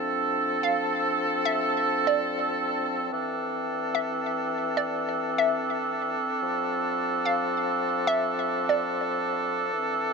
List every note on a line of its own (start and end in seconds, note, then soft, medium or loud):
0.00 3.08 F3 medium
0.00 9.69 C4 medium
0.00 3.08 D4 medium
0.00 3.08 A4 medium
0.63 1.42 F5 medium
1.45 2.04 E5 loud
2.07 3.07 D5 medium
3.11 6.25 E3 medium
3.11 10.13 D4 medium
3.11 10.13 A4 medium
3.95 4.73 E5 medium
4.77 5.35 D5 medium
5.38 5.97 E5 medium
6.42 9.70 F3 medium
7.25 8.04 F5 medium
8.07 8.66 E5 loud
8.69 9.69 D5 medium
9.73 10.13 E3 medium
9.73 10.13 C4 medium